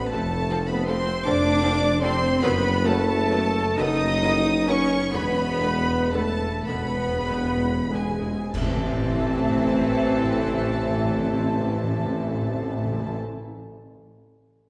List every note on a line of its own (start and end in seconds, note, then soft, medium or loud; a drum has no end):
0.00 0.12 B3 medium
0.00 0.12 B4 medium
0.00 0.12 B5 loud
0.11 1.12 F1 loud
0.11 1.13 F1 loud
0.11 0.20 F3 medium
0.11 0.69 A3 medium
0.11 0.20 A3 medium
0.11 0.68 A3 loud
0.11 0.21 C4 medium
0.11 0.67 A4 loud
0.11 0.21 A4 medium
0.11 0.68 A5 loud
0.50 0.58 F3 medium
0.50 0.58 A3 medium
0.50 0.58 C4 medium
0.50 0.58 A4 medium
0.68 0.88 B3 loud
0.68 0.88 B3 medium
0.68 0.88 B4 loud
0.68 0.88 B5 loud
0.87 0.96 F3 medium
0.87 0.96 A3 medium
0.87 1.25 C4 loud
0.87 0.95 C4 medium
0.87 0.95 A4 medium
0.87 1.26 C5 loud
0.87 1.25 C6 loud
1.25 2.28 F1 loud
1.25 1.34 F3 medium
1.25 1.34 A3 medium
1.25 1.34 C4 medium
1.25 2.02 D4 loud
1.25 2.01 D4 loud
1.25 1.34 A4 medium
1.25 2.02 D5 loud
1.25 2.02 D6 loud
1.63 1.71 F3 medium
1.63 1.71 A3 medium
1.63 1.71 C4 medium
1.63 1.72 A4 medium
2.02 2.10 F3 medium
2.02 2.10 A3 medium
2.02 2.41 C4 loud
2.02 2.42 C4 loud
2.02 2.11 C4 medium
2.02 2.11 A4 medium
2.02 2.42 C5 loud
2.02 2.42 C6 loud
2.41 3.61 F#1 loud
2.41 2.50 D#3 medium
2.41 2.51 F#3 loud
2.41 2.84 B3 loud
2.41 2.50 B3 loud
2.41 2.85 B3 loud
2.41 2.83 B4 loud
2.41 2.50 B4 loud
2.41 2.84 B5 loud
2.84 2.92 D#3 medium
2.84 2.93 F#3 medium
2.84 3.78 A3 loud
2.84 3.79 A3 loud
2.84 2.93 B3 medium
2.84 3.78 A4 loud
2.84 2.94 B4 medium
2.84 3.78 A5 loud
3.31 3.39 D#3 medium
3.31 3.39 F#3 medium
3.31 3.39 B3 medium
3.31 3.39 B4 medium
3.77 4.96 F#1 loud
3.77 3.86 D#3 medium
3.77 3.87 F#3 medium
3.77 3.86 B3 medium
3.77 4.67 D#4 loud
3.77 4.68 D#4 loud
3.77 3.86 B4 medium
3.77 4.37 D#5 loud
3.77 4.68 D#6 loud
4.23 4.31 D#3 medium
4.23 4.31 F#3 medium
4.23 4.32 B3 medium
4.23 4.32 B4 medium
4.66 4.75 D#3 medium
4.66 4.75 F#3 medium
4.66 4.75 B3 medium
4.66 4.99 C#4 loud
4.66 5.13 C#4 loud
4.66 4.74 B4 medium
4.66 5.12 C#5 loud
4.66 5.13 C#6 loud
5.12 6.47 E1 loud
5.12 6.47 E1 medium
5.12 5.20 E2 soft
5.12 5.21 D3 medium
5.12 5.20 G#3 medium
5.12 6.10 B3 loud
5.12 6.12 B3 loud
5.12 5.21 B3 medium
5.12 6.12 B4 loud
5.12 5.22 B4 medium
5.12 6.12 B5 loud
5.22 5.30 E2 soft
5.31 5.39 E2 soft
5.40 5.49 E2 soft
5.50 5.58 E2 medium
5.59 5.68 E2 medium
5.59 5.69 D3 medium
5.59 5.69 G#3 medium
5.59 5.69 B3 medium
5.59 5.69 B4 medium
5.69 5.78 E2 medium
5.80 5.88 E2 soft
5.89 5.99 E2 medium
6.10 6.19 E2 medium
6.10 6.21 D3 medium
6.10 6.21 G#3 medium
6.10 6.67 A3 medium
6.10 6.67 A3 loud
6.10 6.20 B3 medium
6.10 6.66 A4 loud
6.10 6.20 B4 medium
6.10 6.66 A5 loud
6.20 6.30 E2 medium
6.31 6.40 E2 medium
6.42 6.51 E2 medium
6.52 6.62 E2 medium
6.63 8.33 E1 loud
6.63 6.73 E2 medium
6.63 7.90 B3 loud
6.63 7.91 B3 loud
6.63 7.91 B4 loud
6.63 7.88 B5 loud
6.67 8.33 E1 medium
6.67 6.75 D3 medium
6.67 6.76 G#3 medium
6.67 6.75 B3 medium
6.67 6.76 B4 medium
6.74 6.83 E2 medium
6.85 6.95 E2 medium
6.96 7.07 E2 medium
7.08 7.19 E2 medium
7.20 7.31 E2 medium
7.26 7.35 D3 medium
7.26 7.34 G#3 medium
7.26 7.35 B3 medium
7.26 7.35 B4 medium
7.32 7.43 E2 medium
7.44 7.55 E2 medium
7.57 7.69 E2 loud
7.70 7.82 E2 medium
7.83 7.95 E2 medium
7.90 8.00 D3 medium
7.90 8.54 G#3 medium
7.90 8.00 G#3 medium
7.90 8.54 G#3 medium
7.90 8.01 B3 medium
7.90 8.54 G#4 medium
7.90 8.01 B4 medium
7.90 8.55 G#5 medium
7.96 8.07 E2 loud
8.09 8.20 E2 loud
8.22 8.33 E2 loud
8.34 8.45 E2 loud
8.53 13.15 A1 medium
8.53 8.62 A2 loud
8.53 13.15 E3 medium
8.53 13.15 A3 medium
8.53 13.15 C4 medium
8.53 13.15 A4 medium
8.53 13.15 E5 medium
8.53 13.14 A5 loud
8.53 concert bass drum medium
8.53 crash medium
8.62 8.69 A2 medium
8.69 8.77 A2 loud
8.77 8.84 A2 loud
8.84 8.91 A2 loud
8.92 8.99 A2 medium
8.99 9.06 A2 loud
9.06 9.13 A2 medium
9.14 9.21 A2 loud
9.21 9.28 A2 medium
9.29 9.36 A2 loud
9.36 9.43 A2 medium
9.43 9.50 A2 loud
9.51 9.58 A2 medium
9.58 9.65 A2 loud
9.66 9.73 A2 medium
9.73 9.81 A2 medium
9.81 9.88 A2 medium
9.88 9.95 A2 medium
9.95 10.02 A2 loud
10.02 10.10 A2 loud
10.10 10.17 A2 loud
10.17 10.25 A2 loud
10.25 10.32 A2 loud
10.32 10.39 A2 medium
10.39 10.46 A2 medium
10.47 10.54 A2 loud
10.54 10.61 A2 medium
10.62 10.69 A2 loud
10.69 10.76 A2 medium
10.76 10.83 A2 loud
10.83 10.90 A2 medium
10.90 10.97 A2 medium
10.97 11.04 A2 loud
11.04 11.11 A2 medium
11.11 11.18 A2 loud
11.18 11.26 A2 loud
11.26 11.33 A2 loud
11.33 11.40 A2 loud
11.40 11.47 A2 medium
11.47 11.53 A2 medium
11.53 11.61 A2 medium
11.61 11.69 A2 loud
11.69 11.76 A2 medium
11.76 11.84 A2 loud
11.84 11.91 A2 loud
11.91 11.98 A2 loud
11.99 12.06 A2 loud
12.06 12.13 A2 loud
12.13 12.20 A2 loud
12.20 12.28 A2 loud
12.28 12.35 A2 loud
12.35 12.42 A2 loud
12.42 12.49 A2 medium
12.49 12.56 A2 loud
12.56 12.63 A2 medium
12.63 12.70 A2 loud
12.70 12.78 A2 loud
12.78 12.85 A2 medium
12.85 12.92 A2 medium
12.92 13.00 A2 loud
13.00 13.07 A2 medium
13.07 13.14 A2 loud